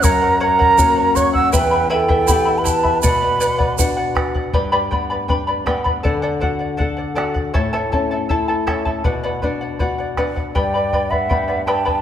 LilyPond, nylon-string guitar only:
\new Staff \with { instrumentName = "Nylon-string guitar" } { \time 2/4 \key g \lydian \tempo 4 = 80 fis,4 <ais cis' fis'>4 | e,4 <b e' g'>4 | b,4 <b d' fis'>4 | g,8 b8 d'8 b8 |
d8 fis'8 a'8 fis'8 | a,8 cis'8 e'8 cis'8 | b,8 d'8 fis'8 d'8 | g,4 <b d' g'>4 | }